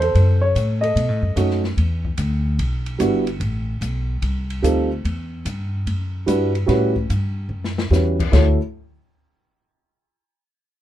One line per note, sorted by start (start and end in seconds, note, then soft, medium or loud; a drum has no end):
0.00 0.13 E2 medium
0.00 0.79 A4 medium
0.00 0.42 C5 medium
0.00 ride soft
0.15 0.54 F#2 medium
0.15 kick soft
0.15 ride medium
0.41 0.83 C#5 medium
0.55 0.95 A2 medium
0.55 hi-hat pedal medium
0.55 ride medium
0.81 1.60 A4 soft
0.81 1.59 D#5 medium
0.81 ride soft
0.96 1.09 B2 medium
0.96 kick soft
0.96 ride medium
1.09 1.22 A2 medium
1.22 1.35 F#2 medium
1.36 1.76 F#2 medium
1.36 1.61 A3 soft
1.36 1.61 C#4 soft
1.36 1.61 D#4 medium
1.36 1.61 F#4 medium
1.36 kick soft
1.36 hi-hat pedal soft
1.36 ride medium
1.51 snare soft
1.64 snare soft
1.77 2.17 E2 medium
1.77 kick soft
1.77 ride soft
2.05 kick medium
2.17 2.57 D2 medium
2.17 kick soft
2.17 hi-hat pedal soft
2.17 ride medium
2.59 2.98 B1 medium
2.59 kick soft
2.59 ride medium
2.86 ride soft
2.99 3.39 G1 medium
2.99 3.24 G3 medium
2.99 3.24 B3 soft
2.99 3.24 D4 soft
2.99 3.24 E4 medium
2.99 3.24 F#4 medium
2.99 kick soft
2.99 hi-hat pedal medium
2.99 ride medium
3.27 ride soft
3.40 3.80 A1 medium
3.40 kick soft
3.40 ride medium
3.81 4.21 B1 medium
3.81 kick soft
3.81 hi-hat pedal soft
3.81 ride medium
4.22 4.62 C2 medium
4.22 kick soft
4.22 ride medium
4.50 ride soft
4.62 5.03 D2 medium
4.62 4.87 G3 medium
4.62 4.87 C4 medium
4.62 4.88 D#4 medium
4.62 4.88 F4 medium
4.62 4.88 A4 medium
4.62 kick soft
4.62 hi-hat pedal soft
4.62 ride medium
5.05 5.44 E2 medium
5.05 kick soft
5.05 ride soft
5.45 5.85 G2 medium
5.45 kick soft
5.45 hi-hat pedal soft
5.45 ride medium
5.86 6.26 F#2 medium
5.86 kick soft
5.86 ride medium
6.26 6.67 G2 medium
6.26 6.51 G3 medium
6.26 6.52 D4 medium
6.26 6.52 E4 soft
6.26 6.52 F#4 medium
6.26 6.52 B4 medium
6.26 kick soft
6.26 hi-hat pedal medium
6.26 ride medium
6.55 ride soft
6.66 7.08 A2 medium
6.66 6.92 G3 medium
6.66 6.92 C#4 medium
6.66 6.92 E4 medium
6.66 6.92 F#4 medium
6.66 6.93 B4 medium
6.66 snare soft
6.66 ride soft
6.96 kick soft
7.10 7.48 G2 medium
7.10 kick soft
7.10 hi-hat pedal soft
7.10 ride medium
7.49 7.89 F#2 medium
7.64 snare medium
7.78 snare medium
7.91 8.31 E2 medium
7.91 8.16 G3 soft
7.91 8.16 C#4 soft
7.91 8.16 E4 soft
7.91 8.16 F#4 soft
7.91 8.16 B4 soft
7.91 snare soft
7.91 hi-hat pedal medium
8.20 kick medium
8.20 crash medium
8.32 8.58 D2 medium
8.32 8.57 E4 medium
8.32 8.57 F#4 soft
8.32 8.57 A4 medium
8.32 8.57 C#5 medium
8.32 kick medium
8.32 snare medium
8.32 crash medium